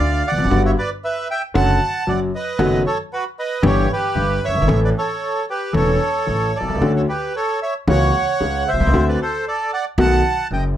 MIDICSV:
0, 0, Header, 1, 4, 480
1, 0, Start_track
1, 0, Key_signature, 2, "major"
1, 0, Tempo, 520833
1, 473, Time_signature, 4, 2, 24, 8
1, 4314, Tempo, 529101
1, 9840, End_track
2, 0, Start_track
2, 0, Title_t, "Bandoneon"
2, 0, Program_c, 0, 23
2, 0, Note_on_c, 0, 74, 77
2, 0, Note_on_c, 0, 77, 103
2, 207, Note_off_c, 0, 74, 0
2, 250, Note_on_c, 0, 74, 67
2, 253, Note_on_c, 0, 78, 94
2, 262, Note_off_c, 0, 77, 0
2, 575, Note_off_c, 0, 74, 0
2, 576, Note_off_c, 0, 78, 0
2, 606, Note_on_c, 0, 76, 81
2, 607, Note_on_c, 0, 73, 65
2, 656, Note_off_c, 0, 76, 0
2, 657, Note_off_c, 0, 73, 0
2, 723, Note_on_c, 0, 74, 95
2, 724, Note_on_c, 0, 71, 61
2, 828, Note_off_c, 0, 74, 0
2, 829, Note_off_c, 0, 71, 0
2, 962, Note_on_c, 0, 71, 74
2, 962, Note_on_c, 0, 76, 93
2, 1179, Note_off_c, 0, 71, 0
2, 1179, Note_off_c, 0, 76, 0
2, 1204, Note_on_c, 0, 76, 78
2, 1205, Note_on_c, 0, 79, 97
2, 1309, Note_off_c, 0, 76, 0
2, 1310, Note_off_c, 0, 79, 0
2, 1440, Note_on_c, 0, 81, 117
2, 1441, Note_on_c, 0, 78, 93
2, 1880, Note_off_c, 0, 78, 0
2, 1922, Note_on_c, 0, 74, 65
2, 1922, Note_on_c, 0, 78, 84
2, 1926, Note_off_c, 0, 81, 0
2, 2026, Note_off_c, 0, 74, 0
2, 2026, Note_off_c, 0, 78, 0
2, 2167, Note_on_c, 0, 75, 90
2, 2169, Note_on_c, 0, 71, 76
2, 2603, Note_off_c, 0, 75, 0
2, 2605, Note_off_c, 0, 71, 0
2, 2641, Note_on_c, 0, 73, 99
2, 2644, Note_on_c, 0, 69, 72
2, 2745, Note_off_c, 0, 73, 0
2, 2748, Note_off_c, 0, 69, 0
2, 2886, Note_on_c, 0, 66, 77
2, 2886, Note_on_c, 0, 71, 96
2, 2989, Note_off_c, 0, 71, 0
2, 2990, Note_off_c, 0, 66, 0
2, 3127, Note_on_c, 0, 71, 70
2, 3128, Note_on_c, 0, 75, 92
2, 3341, Note_off_c, 0, 71, 0
2, 3342, Note_off_c, 0, 75, 0
2, 3367, Note_on_c, 0, 67, 83
2, 3373, Note_on_c, 0, 73, 101
2, 3582, Note_off_c, 0, 67, 0
2, 3608, Note_off_c, 0, 73, 0
2, 3620, Note_on_c, 0, 67, 78
2, 3621, Note_on_c, 0, 71, 104
2, 4054, Note_off_c, 0, 67, 0
2, 4098, Note_on_c, 0, 73, 76
2, 4099, Note_on_c, 0, 76, 88
2, 4101, Note_off_c, 0, 71, 0
2, 4422, Note_off_c, 0, 73, 0
2, 4423, Note_off_c, 0, 76, 0
2, 4462, Note_on_c, 0, 74, 81
2, 4464, Note_on_c, 0, 71, 61
2, 4510, Note_off_c, 0, 74, 0
2, 4511, Note_off_c, 0, 71, 0
2, 4586, Note_on_c, 0, 69, 77
2, 4587, Note_on_c, 0, 73, 84
2, 5016, Note_off_c, 0, 69, 0
2, 5017, Note_off_c, 0, 73, 0
2, 5057, Note_on_c, 0, 67, 60
2, 5062, Note_on_c, 0, 71, 83
2, 5270, Note_off_c, 0, 67, 0
2, 5272, Note_off_c, 0, 71, 0
2, 5294, Note_on_c, 0, 69, 70
2, 5295, Note_on_c, 0, 73, 94
2, 5979, Note_off_c, 0, 69, 0
2, 6013, Note_on_c, 0, 69, 58
2, 6019, Note_on_c, 0, 74, 72
2, 6037, Note_off_c, 0, 73, 0
2, 6346, Note_off_c, 0, 69, 0
2, 6349, Note_off_c, 0, 74, 0
2, 6382, Note_on_c, 0, 69, 57
2, 6383, Note_on_c, 0, 73, 69
2, 6433, Note_off_c, 0, 69, 0
2, 6433, Note_off_c, 0, 73, 0
2, 6497, Note_on_c, 0, 67, 57
2, 6498, Note_on_c, 0, 71, 75
2, 6716, Note_off_c, 0, 67, 0
2, 6740, Note_off_c, 0, 71, 0
2, 6745, Note_on_c, 0, 69, 64
2, 6747, Note_on_c, 0, 73, 82
2, 6961, Note_off_c, 0, 69, 0
2, 6962, Note_off_c, 0, 73, 0
2, 6985, Note_on_c, 0, 76, 78
2, 6986, Note_on_c, 0, 73, 59
2, 7090, Note_off_c, 0, 73, 0
2, 7090, Note_off_c, 0, 76, 0
2, 7228, Note_on_c, 0, 73, 77
2, 7232, Note_on_c, 0, 78, 102
2, 7901, Note_off_c, 0, 73, 0
2, 7944, Note_on_c, 0, 76, 93
2, 7945, Note_on_c, 0, 72, 71
2, 7960, Note_off_c, 0, 78, 0
2, 8272, Note_off_c, 0, 72, 0
2, 8307, Note_off_c, 0, 76, 0
2, 8308, Note_on_c, 0, 71, 56
2, 8310, Note_on_c, 0, 74, 76
2, 8410, Note_off_c, 0, 71, 0
2, 8411, Note_off_c, 0, 74, 0
2, 8432, Note_on_c, 0, 69, 63
2, 8432, Note_on_c, 0, 72, 86
2, 8644, Note_off_c, 0, 69, 0
2, 8644, Note_off_c, 0, 72, 0
2, 8666, Note_on_c, 0, 69, 75
2, 8669, Note_on_c, 0, 74, 83
2, 8879, Note_off_c, 0, 69, 0
2, 8880, Note_off_c, 0, 74, 0
2, 8899, Note_on_c, 0, 78, 87
2, 8900, Note_on_c, 0, 74, 67
2, 9003, Note_off_c, 0, 78, 0
2, 9004, Note_off_c, 0, 74, 0
2, 9137, Note_on_c, 0, 78, 89
2, 9141, Note_on_c, 0, 81, 113
2, 9570, Note_off_c, 0, 78, 0
2, 9572, Note_off_c, 0, 81, 0
2, 9618, Note_on_c, 0, 75, 63
2, 9620, Note_on_c, 0, 79, 79
2, 9720, Note_off_c, 0, 75, 0
2, 9721, Note_off_c, 0, 79, 0
2, 9840, End_track
3, 0, Start_track
3, 0, Title_t, "Grand piano"
3, 0, Program_c, 1, 0
3, 0, Note_on_c, 1, 38, 56
3, 0, Note_on_c, 1, 50, 57
3, 196, Note_off_c, 1, 38, 0
3, 196, Note_off_c, 1, 50, 0
3, 290, Note_on_c, 1, 40, 45
3, 351, Note_on_c, 1, 41, 62
3, 352, Note_off_c, 1, 40, 0
3, 408, Note_on_c, 1, 42, 76
3, 412, Note_off_c, 1, 41, 0
3, 463, Note_on_c, 1, 50, 56
3, 465, Note_on_c, 1, 31, 72
3, 467, Note_on_c, 1, 43, 74
3, 467, Note_on_c, 1, 55, 61
3, 468, Note_on_c, 1, 59, 53
3, 469, Note_on_c, 1, 66, 79
3, 470, Note_off_c, 1, 42, 0
3, 667, Note_off_c, 1, 50, 0
3, 668, Note_off_c, 1, 31, 0
3, 669, Note_off_c, 1, 43, 0
3, 669, Note_off_c, 1, 55, 0
3, 670, Note_off_c, 1, 59, 0
3, 670, Note_off_c, 1, 66, 0
3, 1421, Note_on_c, 1, 57, 73
3, 1422, Note_on_c, 1, 50, 76
3, 1423, Note_on_c, 1, 42, 87
3, 1424, Note_on_c, 1, 54, 86
3, 1424, Note_on_c, 1, 61, 71
3, 1427, Note_on_c, 1, 66, 83
3, 1626, Note_off_c, 1, 50, 0
3, 1626, Note_off_c, 1, 57, 0
3, 1627, Note_off_c, 1, 42, 0
3, 1627, Note_off_c, 1, 61, 0
3, 1628, Note_off_c, 1, 54, 0
3, 1629, Note_off_c, 1, 66, 0
3, 1907, Note_on_c, 1, 54, 63
3, 1910, Note_on_c, 1, 42, 63
3, 2107, Note_off_c, 1, 54, 0
3, 2108, Note_off_c, 1, 42, 0
3, 2383, Note_on_c, 1, 51, 69
3, 2384, Note_on_c, 1, 57, 68
3, 2387, Note_on_c, 1, 42, 86
3, 2387, Note_on_c, 1, 54, 91
3, 2389, Note_on_c, 1, 59, 60
3, 2390, Note_on_c, 1, 66, 86
3, 2586, Note_off_c, 1, 51, 0
3, 2587, Note_off_c, 1, 57, 0
3, 2588, Note_off_c, 1, 42, 0
3, 2588, Note_off_c, 1, 54, 0
3, 2589, Note_off_c, 1, 59, 0
3, 2590, Note_off_c, 1, 66, 0
3, 3341, Note_on_c, 1, 52, 75
3, 3341, Note_on_c, 1, 59, 72
3, 3342, Note_on_c, 1, 43, 88
3, 3345, Note_on_c, 1, 62, 76
3, 3346, Note_on_c, 1, 31, 79
3, 3347, Note_on_c, 1, 67, 84
3, 3546, Note_off_c, 1, 59, 0
3, 3547, Note_off_c, 1, 43, 0
3, 3547, Note_off_c, 1, 52, 0
3, 3549, Note_off_c, 1, 31, 0
3, 3549, Note_off_c, 1, 62, 0
3, 3550, Note_off_c, 1, 67, 0
3, 3829, Note_on_c, 1, 31, 58
3, 3829, Note_on_c, 1, 43, 65
3, 4032, Note_off_c, 1, 31, 0
3, 4032, Note_off_c, 1, 43, 0
3, 4132, Note_on_c, 1, 30, 48
3, 4192, Note_off_c, 1, 30, 0
3, 4193, Note_on_c, 1, 31, 62
3, 4252, Note_on_c, 1, 32, 77
3, 4253, Note_off_c, 1, 31, 0
3, 4312, Note_on_c, 1, 52, 63
3, 4312, Note_on_c, 1, 57, 59
3, 4313, Note_off_c, 1, 32, 0
3, 4314, Note_on_c, 1, 33, 83
3, 4315, Note_on_c, 1, 45, 70
3, 4316, Note_on_c, 1, 69, 70
3, 4317, Note_on_c, 1, 61, 56
3, 4514, Note_off_c, 1, 52, 0
3, 4514, Note_off_c, 1, 57, 0
3, 4515, Note_off_c, 1, 33, 0
3, 4515, Note_off_c, 1, 45, 0
3, 4516, Note_off_c, 1, 61, 0
3, 4516, Note_off_c, 1, 69, 0
3, 5267, Note_on_c, 1, 52, 68
3, 5269, Note_on_c, 1, 57, 64
3, 5271, Note_on_c, 1, 28, 71
3, 5272, Note_on_c, 1, 61, 62
3, 5273, Note_on_c, 1, 69, 71
3, 5274, Note_on_c, 1, 40, 80
3, 5473, Note_off_c, 1, 52, 0
3, 5475, Note_off_c, 1, 57, 0
3, 5476, Note_off_c, 1, 28, 0
3, 5476, Note_off_c, 1, 61, 0
3, 5476, Note_off_c, 1, 69, 0
3, 5477, Note_off_c, 1, 40, 0
3, 5753, Note_on_c, 1, 33, 50
3, 5757, Note_on_c, 1, 45, 49
3, 5962, Note_off_c, 1, 33, 0
3, 5964, Note_off_c, 1, 45, 0
3, 6057, Note_on_c, 1, 35, 46
3, 6121, Note_off_c, 1, 35, 0
3, 6129, Note_on_c, 1, 36, 55
3, 6187, Note_off_c, 1, 36, 0
3, 6187, Note_on_c, 1, 37, 64
3, 6245, Note_on_c, 1, 50, 73
3, 6247, Note_off_c, 1, 37, 0
3, 6247, Note_on_c, 1, 57, 58
3, 6248, Note_on_c, 1, 61, 58
3, 6249, Note_on_c, 1, 38, 73
3, 6251, Note_on_c, 1, 66, 71
3, 6448, Note_off_c, 1, 57, 0
3, 6449, Note_off_c, 1, 38, 0
3, 6449, Note_off_c, 1, 61, 0
3, 6450, Note_off_c, 1, 50, 0
3, 6450, Note_off_c, 1, 66, 0
3, 7211, Note_on_c, 1, 52, 66
3, 7212, Note_on_c, 1, 37, 76
3, 7212, Note_on_c, 1, 58, 64
3, 7213, Note_on_c, 1, 61, 62
3, 7214, Note_on_c, 1, 49, 76
3, 7214, Note_on_c, 1, 66, 77
3, 7411, Note_off_c, 1, 52, 0
3, 7412, Note_off_c, 1, 37, 0
3, 7412, Note_off_c, 1, 58, 0
3, 7412, Note_off_c, 1, 61, 0
3, 7413, Note_off_c, 1, 49, 0
3, 7413, Note_off_c, 1, 66, 0
3, 7691, Note_on_c, 1, 37, 56
3, 7692, Note_on_c, 1, 49, 59
3, 7891, Note_off_c, 1, 37, 0
3, 7891, Note_off_c, 1, 49, 0
3, 7996, Note_on_c, 1, 35, 48
3, 8052, Note_off_c, 1, 35, 0
3, 8056, Note_on_c, 1, 36, 71
3, 8112, Note_off_c, 1, 36, 0
3, 8113, Note_on_c, 1, 37, 85
3, 8167, Note_on_c, 1, 50, 75
3, 8170, Note_off_c, 1, 37, 0
3, 8171, Note_on_c, 1, 57, 61
3, 8173, Note_on_c, 1, 38, 88
3, 8174, Note_on_c, 1, 60, 61
3, 8176, Note_on_c, 1, 66, 74
3, 8371, Note_off_c, 1, 57, 0
3, 8372, Note_off_c, 1, 38, 0
3, 8372, Note_off_c, 1, 50, 0
3, 8373, Note_off_c, 1, 60, 0
3, 8374, Note_off_c, 1, 66, 0
3, 9121, Note_on_c, 1, 35, 81
3, 9122, Note_on_c, 1, 47, 97
3, 9123, Note_on_c, 1, 51, 74
3, 9123, Note_on_c, 1, 57, 65
3, 9124, Note_on_c, 1, 59, 62
3, 9125, Note_on_c, 1, 66, 87
3, 9321, Note_off_c, 1, 35, 0
3, 9321, Note_off_c, 1, 47, 0
3, 9321, Note_off_c, 1, 57, 0
3, 9322, Note_off_c, 1, 51, 0
3, 9322, Note_off_c, 1, 59, 0
3, 9323, Note_off_c, 1, 66, 0
3, 9605, Note_on_c, 1, 42, 56
3, 9607, Note_on_c, 1, 30, 63
3, 9799, Note_off_c, 1, 30, 0
3, 9799, Note_off_c, 1, 42, 0
3, 9840, End_track
4, 0, Start_track
4, 0, Title_t, "Upright bass"
4, 0, Program_c, 2, 32
4, 0, Note_on_c, 2, 38, 61
4, 197, Note_off_c, 2, 38, 0
4, 296, Note_on_c, 2, 28, 51
4, 352, Note_off_c, 2, 28, 0
4, 358, Note_on_c, 2, 29, 61
4, 410, Note_off_c, 2, 29, 0
4, 416, Note_on_c, 2, 30, 71
4, 467, Note_off_c, 2, 30, 0
4, 472, Note_on_c, 2, 31, 92
4, 672, Note_off_c, 2, 31, 0
4, 1432, Note_on_c, 2, 30, 108
4, 1631, Note_off_c, 2, 30, 0
4, 1912, Note_on_c, 2, 30, 62
4, 2109, Note_off_c, 2, 30, 0
4, 2387, Note_on_c, 2, 30, 97
4, 2588, Note_off_c, 2, 30, 0
4, 3347, Note_on_c, 2, 31, 111
4, 3550, Note_off_c, 2, 31, 0
4, 3829, Note_on_c, 2, 31, 67
4, 4032, Note_off_c, 2, 31, 0
4, 4129, Note_on_c, 2, 30, 46
4, 4191, Note_off_c, 2, 30, 0
4, 4195, Note_on_c, 2, 31, 62
4, 4250, Note_off_c, 2, 31, 0
4, 4256, Note_on_c, 2, 32, 71
4, 4315, Note_off_c, 2, 32, 0
4, 4321, Note_on_c, 2, 33, 104
4, 4518, Note_off_c, 2, 33, 0
4, 5278, Note_on_c, 2, 28, 92
4, 5479, Note_off_c, 2, 28, 0
4, 5768, Note_on_c, 2, 33, 62
4, 5969, Note_off_c, 2, 33, 0
4, 6071, Note_on_c, 2, 35, 45
4, 6125, Note_off_c, 2, 35, 0
4, 6130, Note_on_c, 2, 36, 52
4, 6188, Note_off_c, 2, 36, 0
4, 6193, Note_on_c, 2, 37, 61
4, 6246, Note_off_c, 2, 37, 0
4, 6251, Note_on_c, 2, 38, 87
4, 6450, Note_off_c, 2, 38, 0
4, 7212, Note_on_c, 2, 37, 100
4, 7412, Note_off_c, 2, 37, 0
4, 7692, Note_on_c, 2, 37, 62
4, 7891, Note_off_c, 2, 37, 0
4, 7988, Note_on_c, 2, 35, 50
4, 8048, Note_off_c, 2, 35, 0
4, 8051, Note_on_c, 2, 36, 70
4, 8106, Note_off_c, 2, 36, 0
4, 8111, Note_on_c, 2, 37, 77
4, 8166, Note_off_c, 2, 37, 0
4, 8171, Note_on_c, 2, 38, 91
4, 8372, Note_off_c, 2, 38, 0
4, 9120, Note_on_c, 2, 35, 104
4, 9320, Note_off_c, 2, 35, 0
4, 9599, Note_on_c, 2, 30, 65
4, 9796, Note_off_c, 2, 30, 0
4, 9840, End_track
0, 0, End_of_file